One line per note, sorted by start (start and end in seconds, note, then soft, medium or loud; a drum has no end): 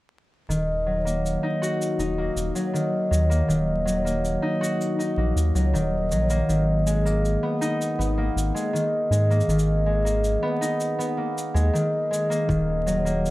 0.49 1.37 D#1 medium
0.49 2.72 D#3 medium
0.49 cabasa soft
0.86 2.54 F#3 medium
1.05 2.18 A#3 medium
1.05 cabasa medium
1.26 cabasa soft
1.43 1.99 D#4 medium
1.62 4.05 F#4 medium
1.62 cabasa medium
1.82 cabasa medium
1.99 2.30 D#1 medium
1.99 4.42 D#4 medium
1.99 cabasa soft
2.18 3.29 A#3 medium
2.36 2.52 D#1 medium
2.36 cabasa medium
2.55 2.79 F#3 medium
2.55 cabasa soft
2.73 3.47 D#3 medium
2.73 cabasa soft
3.11 3.42 D#2 medium
3.11 3.54 F#3 medium
3.11 cabasa medium
3.30 4.04 A#3 medium
3.30 cabasa medium
3.48 4.37 D#1 medium
3.48 5.72 D#3 medium
3.48 cabasa soft
3.85 5.54 F#3 medium
3.85 cabasa medium
4.05 5.17 A#3 medium
4.05 cabasa soft
4.25 cabasa soft
4.42 4.98 D#4 medium
4.61 7.04 F#4 medium
4.61 cabasa medium
4.81 cabasa soft
4.99 7.61 D#4 medium
4.99 cabasa soft
5.17 5.33 A#1 medium
5.17 6.30 A#3 medium
5.36 5.52 D#2 medium
5.36 cabasa medium
5.55 5.75 C#2 medium
5.55 5.79 F#3 medium
5.55 cabasa medium
5.73 6.13 D#1 medium
5.73 6.47 D#3 medium
5.73 cabasa soft
6.11 6.42 A#1 medium
6.11 6.54 F#3 medium
6.11 cabasa medium
6.30 7.05 A#3 medium
6.30 cabasa soft
6.49 7.38 G#1 medium
6.49 8.72 D#3 medium
6.49 cabasa soft
6.87 8.53 G#3 medium
6.87 cabasa medium
7.05 7.49 A#3 medium
7.05 cabasa soft
7.25 cabasa soft
7.43 7.98 B3 medium
7.61 10.32 D#4 loud
7.61 cabasa medium
7.82 cabasa medium
7.99 8.30 G#1 medium
7.99 8.23 B3 medium
7.99 cabasa soft
8.17 9.30 A#3 medium
8.36 8.52 G#1 medium
8.36 cabasa medium
8.55 8.79 G#3 medium
8.55 cabasa medium
8.73 9.48 D#3 medium
8.73 cabasa soft
9.11 9.42 G#2 medium
9.11 9.54 G#3 medium
9.11 cabasa medium
9.30 10.04 A#3 medium
9.30 cabasa soft
9.41 cabasa soft
9.48 10.37 G#1 medium
9.48 11.72 D#3 medium
9.48 cabasa soft
9.59 cabasa soft
9.86 11.53 G#3 medium
10.05 10.49 A#3 medium
10.05 cabasa medium
10.24 cabasa soft
10.43 10.98 B3 loud
10.61 13.31 D#4 medium
10.61 cabasa medium
10.80 cabasa medium
10.99 11.23 B3 medium
10.99 cabasa soft
11.17 12.29 A#3 medium
11.38 cabasa medium
11.54 11.70 D#2 medium
11.54 11.79 G#3 medium
11.54 cabasa medium
11.73 12.48 D#3 medium
11.73 cabasa soft
12.11 12.54 G#3 medium
12.11 cabasa medium
12.30 13.05 A#3 medium
12.30 cabasa medium
12.49 13.31 D#1 medium
12.49 13.31 D#3 medium
12.49 kick loud
12.49 cabasa soft
12.86 13.31 F#3 medium
12.86 cabasa medium
13.05 13.31 A#3 medium
13.05 cabasa soft
13.26 cabasa soft